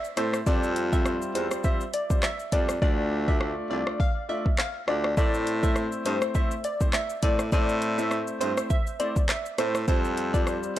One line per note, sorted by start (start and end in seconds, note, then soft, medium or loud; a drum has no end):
0.04 shaker medium
0.17 0.41 A2 medium
0.17 0.35 A3 medium
0.17 0.35 C4 medium
0.17 0.35 E4 medium
0.17 0.30 C5 medium
0.17 0.35 C5 medium
0.17 cross-stick loud
0.17 closed hi-hat medium
0.17 shaker medium
0.34 cross-stick medium
0.34 shaker medium
0.46 1.18 F2 loud
0.46 0.88 G3 medium
0.46 0.89 C4 medium
0.46 0.89 F4 medium
0.46 0.89 C5 loud
0.46 0.59 D5 loud
0.46 kick loud
0.46 shaker medium
0.63 shaker medium
0.76 closed hi-hat medium
0.76 shaker soft
0.92 1.32 G3 medium
0.92 1.32 C4 medium
0.92 1.32 F4 medium
0.92 1.32 C5 medium
0.92 1.02 E5 medium
0.92 kick medium
0.92 shaker medium
1.05 cross-stick loud
1.05 shaker medium
1.22 shaker medium
1.35 1.48 E2 loud
1.35 1.62 G3 medium
1.35 1.62 C4 medium
1.35 1.62 F4 medium
1.35 1.47 C5 medium
1.35 1.62 C5 medium
1.35 closed hi-hat medium
1.35 shaker medium
1.51 cross-stick medium
1.51 shaker medium
1.64 1.81 G3 medium
1.64 1.82 C4 medium
1.64 1.82 F4 medium
1.64 1.82 C5 loud
1.64 1.77 E5 medium
1.64 kick loud
1.64 shaker medium
1.81 shaker medium
1.94 2.06 D5 medium
1.94 closed hi-hat medium
1.94 shaker medium
2.10 2.24 G3 medium
2.10 2.24 C4 medium
2.10 2.24 F4 medium
2.10 2.24 C5 medium
2.10 kick loud
2.10 shaker medium
2.23 2.36 E5 medium
2.23 cross-stick loud
2.23 clap loud
2.23 shaker medium
2.40 shaker soft
2.52 2.77 F2 medium
2.52 2.70 G3 medium
2.52 2.70 C4 medium
2.52 2.70 F4 medium
2.52 2.70 C5 medium
2.52 2.65 D5 medium
2.52 kick loud
2.52 closed hi-hat medium
2.52 shaker medium
2.69 cross-stick medium
2.69 shaker medium
2.82 3.53 D2 loud
2.82 3.24 A3 loud
2.82 3.24 D4 medium
2.82 3.24 F4 medium
2.82 2.94 D5 loud
2.82 3.24 D5 loud
2.82 kick loud
3.28 3.67 A3 medium
3.28 3.67 D4 medium
3.28 3.67 F4 medium
3.28 3.67 D5 medium
3.28 3.38 E5 medium
3.28 kick medium
3.41 cross-stick medium
3.70 3.84 C2 medium
3.70 3.97 A3 medium
3.70 3.97 D4 medium
3.70 3.98 F4 medium
3.70 3.98 D5 medium
3.70 3.83 D5 medium
3.87 cross-stick medium
4.00 4.12 F5 medium
4.00 kick loud
4.29 4.46 A3 medium
4.29 4.46 D4 medium
4.29 4.46 F4 medium
4.29 4.46 D5 medium
4.29 4.41 E5 medium
4.46 kick loud
4.58 4.71 F5 medium
4.58 cross-stick loud
4.58 clap loud
4.88 5.12 D2 loud
4.88 5.05 A3 medium
4.88 5.05 D4 medium
4.88 5.05 F4 medium
4.88 5.00 D5 medium
4.88 5.05 D5 medium
4.88 cross-stick loud
5.04 cross-stick medium
5.17 5.89 A2 loud
5.17 5.59 A3 medium
5.17 5.59 C4 medium
5.17 5.59 E4 medium
5.17 5.59 C5 loud
5.17 5.30 D5 medium
5.17 kick loud
5.17 shaker medium
5.34 shaker medium
5.47 closed hi-hat medium
5.47 shaker soft
5.63 6.02 A3 medium
5.63 6.02 C4 medium
5.63 6.02 E4 medium
5.63 6.03 C5 medium
5.63 5.73 E5 medium
5.63 kick medium
5.63 shaker medium
5.76 cross-stick medium
5.76 shaker medium
5.92 shaker medium
6.05 6.19 G2 loud
6.05 6.33 A3 medium
6.05 6.33 C4 medium
6.05 6.33 E4 medium
6.05 6.18 C5 medium
6.05 6.33 C5 medium
6.05 closed hi-hat medium
6.05 shaker medium
6.22 cross-stick loud
6.22 shaker medium
6.34 6.52 A3 medium
6.34 6.52 C4 medium
6.34 6.52 E4 medium
6.34 6.52 C5 loud
6.34 6.47 E5 medium
6.34 kick loud
6.34 shaker medium
6.51 shaker medium
6.64 6.77 D5 medium
6.64 closed hi-hat medium
6.64 shaker medium
6.81 6.95 A3 medium
6.81 6.95 C4 medium
6.81 6.95 E4 medium
6.81 6.95 C5 medium
6.81 kick loud
6.81 shaker medium
6.93 7.06 E5 medium
6.93 cross-stick loud
6.93 clap loud
6.93 shaker medium
7.10 shaker medium
7.23 7.47 A2 medium
7.23 7.40 A3 medium
7.23 7.40 C4 medium
7.23 7.41 E4 medium
7.23 7.41 C5 medium
7.23 7.35 D5 medium
7.23 kick loud
7.23 closed hi-hat medium
7.23 shaker medium
7.39 cross-stick medium
7.39 shaker medium
7.52 8.24 A2 loud
7.52 7.94 A3 loud
7.52 7.94 C4 medium
7.52 7.95 E4 medium
7.52 7.95 C5 loud
7.52 7.65 D5 loud
7.52 kick loud
7.52 shaker medium
7.69 shaker medium
7.82 closed hi-hat medium
7.82 shaker soft
7.98 8.37 A3 medium
7.98 8.38 C4 medium
7.98 8.38 E4 medium
7.98 8.38 C5 medium
7.98 8.08 E5 medium
7.98 shaker medium
8.11 cross-stick medium
8.11 shaker medium
8.27 shaker medium
8.40 8.54 G2 medium
8.40 8.68 A3 medium
8.40 8.68 C4 medium
8.40 8.68 E4 medium
8.40 8.53 C5 medium
8.40 8.68 C5 medium
8.40 closed hi-hat medium
8.40 shaker medium
8.57 cross-stick loud
8.57 shaker medium
8.70 8.82 E5 medium
8.70 kick loud
8.70 shaker medium
8.87 shaker medium
8.99 9.17 A3 medium
8.99 9.17 C4 medium
8.99 9.17 E4 medium
8.99 9.17 C5 medium
8.99 9.12 D5 medium
8.99 closed hi-hat medium
8.99 shaker medium
9.16 kick loud
9.16 shaker medium
9.29 9.41 E5 medium
9.29 cross-stick loud
9.29 clap loud
9.29 shaker medium
9.46 shaker medium
9.58 9.83 A2 medium
9.58 9.76 A3 medium
9.58 9.76 C4 medium
9.58 9.76 E4 medium
9.58 9.71 C5 medium
9.58 9.76 C5 medium
9.58 cross-stick loud
9.58 closed hi-hat medium
9.58 shaker medium
9.75 cross-stick loud
9.75 shaker medium
9.88 10.59 F2 loud
9.88 10.30 G3 loud
9.88 10.30 C4 medium
9.88 10.30 F4 medium
9.88 10.00 C5 loud
9.88 10.30 C5 loud
9.88 kick loud
9.88 shaker medium
10.04 shaker medium
10.17 closed hi-hat medium
10.17 shaker soft
10.34 10.73 G3 medium
10.34 10.73 C4 medium
10.34 10.73 F4 medium
10.34 10.73 C5 medium
10.34 10.43 D5 medium
10.34 kick medium
10.34 shaker medium
10.47 cross-stick medium
10.47 shaker medium
10.63 shaker medium